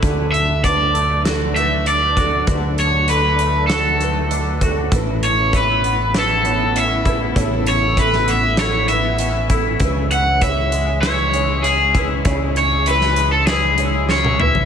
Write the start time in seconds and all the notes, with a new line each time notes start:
Already playing: A3
0.02 D2 D3 F#3 D4 A4, kick, closed hi-hat
0.32 E5, closed hi-hat
0.63 D3 B4 D5, kick, closed hi-hat
0.94 A3, closed hi-hat
1.25 F#4 A4, snare, closed hi-hat
1.55 A3 B4 E5, closed hi-hat
1.86 D4 D5, closed hi-hat
2.17 F#4 A4, kick, closed hi-hat
2.47 D2 D3 A3 B4, kick, closed hi-hat
2.78 C#5, closed hi-hat
3.08 D3 A4 B4, closed hi-hat
3.39 A3, closed hi-hat
3.67 F#4 A4, snare, closed hi-hat
4.01 A3 B4, closed hi-hat
4.31 D4, closed hi-hat
4.61 F#4 A4, kick, closed hi-hat
4.91 A1 A2 C#3 E3 A3 B3 E4 B4, kick, closed hi-hat
5.23 C#5, closed hi-hat
5.53 E3 B4 C#5, kick, closed hi-hat
5.84 B3, closed hi-hat
6.14 E4 B4, snare, closed hi-hat
6.19 A4
6.45 B3 C#5, closed hi-hat
6.75 C#4 E5, closed hi-hat
7.05 E4 B4, kick, closed hi-hat
7.36 A1 A2 C#5, kick, closed hi-hat
7.66 C#5, closed hi-hat
7.97 E3 A4 B4, kick, closed hi-hat
8.13 snare
8.27 B3 E5, closed hi-hat
8.57 E4 A4 C#5, snare, closed hi-hat
8.88 B3 B4 E5, closed hi-hat
9.19 C#4, closed hi-hat
9.50 E4 A4, kick, closed hi-hat
9.80 C#2 C#3 G#3 C#4 B4, kick, closed hi-hat
10.11 F#5, closed hi-hat
10.41 E3 C#5 E5, kick, closed hi-hat
10.72 G#3, closed hi-hat
11.01 E4 B4 C#5, snare, closed hi-hat
11.33 G#3 C#5, closed hi-hat
11.63 C#4 G#4, closed hi-hat
11.95 E4 B4, kick, closed hi-hat
12.25 C#2 C#3 C#5, kick, closed hi-hat
12.56 C#5, closed hi-hat
12.86 E3 B4, closed hi-hat
13.01 snare
13.16 G#3, closed hi-hat
13.32 A4
13.46 E4 G#4 B4, snare, closed hi-hat
13.78 G#3 C#5, closed hi-hat
14.09 C#4 C#5, snare
14.25 high tom
14.39 E4 B4 E5, mid tom
14.55 floor tom